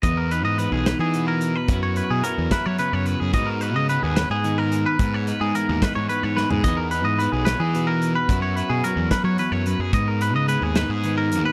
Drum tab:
HH |x-x-x-x-x-x-|x-x-x-x-x-x-|x-x-x-x-x-x-|x-x-x-x-x---|
SD |------o-----|------o-----|------o-----|------o---o-|
FT |------------|------------|------------|-----------o|
BD |o-----------|o-----o-----|o-----------|o-----o-----|

HH |x-x-x-x-x-x-|x-x-x-x-x-x-|x-x-x-x-x-x-|
SD |------o-----|------o-----|------o-----|
FT |------------|------------|------------|
BD |o-----------|o-----o-----|o-----------|